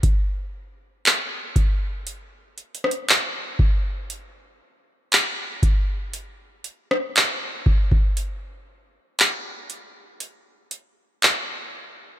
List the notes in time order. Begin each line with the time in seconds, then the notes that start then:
0.03 kick, closed hi-hat
1.05 clap, closed hi-hat
1.56 kick, closed hi-hat
2.07 closed hi-hat
2.58 closed hi-hat
2.75 closed hi-hat
2.84 cross-stick
2.91 closed hi-hat
3.08 clap, closed hi-hat
3.59 kick
4.10 closed hi-hat
5.12 clap, closed hi-hat
5.63 kick, closed hi-hat
6.13 closed hi-hat
6.64 closed hi-hat
6.91 cross-stick
7.16 clap, closed hi-hat
7.66 kick
7.92 kick
8.17 closed hi-hat
9.19 clap, closed hi-hat
9.70 closed hi-hat
10.20 closed hi-hat
10.71 closed hi-hat
11.22 clap, closed hi-hat